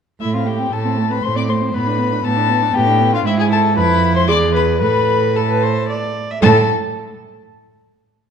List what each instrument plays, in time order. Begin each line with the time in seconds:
0.21 cello A2, viola A3, violin E4 E5
0.34 viola C4, violin F4 F5
0.46 viola A3, violin G4 G5
0.59 viola C4
0.71 cello A2, viola A3, violin A4 A5
0.85 viola C4
0.98 viola A3
1.11 viola C4, violin B4 B5
1.22 cello A2, viola A3, violin C5 C6
1.36 viola C4, violin D5 D6
1.49 viola A3, violin C5 C6
1.61 viola C4
1.74 cello A2, viola B3, violin B4 B5
1.87 viola D4
1.99 viola B3
2.12 viola D4
2.24 cello A2, viola B3, violin A4 A5
2.37 viola D4
2.49 viola B3
2.62 viola D4
2.74 cello A2, viola B3, violin G4 G5
2.87 viola D4
3.00 viola B3
3.13 viola D4, violin F4 F5
3.25 cello G#2, violin E4 E5, viola E4
3.38 violin G#4 G#5
3.50 violin A4 A5
3.77 cello F2, viola E4, violin B4 B5
4.15 violin C5 C6
4.28 cello E2, viola G#4, violin D5 D6
4.54 violin B4 B5
4.80 cello A2, viola A4, violin B4 B5
5.36 violin A4 A5, viola A4
5.50 viola B4
5.63 viola C5
5.89 viola D5
6.31 viola E5
6.42 cello A2, viola A4, violin A4 A5